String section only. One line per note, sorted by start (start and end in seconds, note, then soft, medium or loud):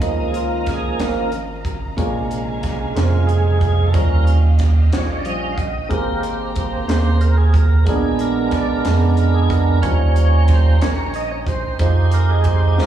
0.00 1.95 D#5 medium
0.00 1.95 F5 medium
0.00 3.91 A#5 medium
1.97 5.87 F5 medium
1.97 3.92 G#5 medium
3.95 5.89 D#5 medium
3.95 7.84 G5 medium
5.92 7.86 C5 medium
5.92 7.85 A#5 medium
7.86 9.81 B3 medium
7.86 9.81 D5 medium
7.86 9.81 A#5 medium
9.84 11.78 C#4 medium
9.84 12.86 D#5 medium
9.84 11.79 G5 medium
9.84 11.78 A#5 medium
11.79 12.86 C5 medium
11.79 12.86 F5 medium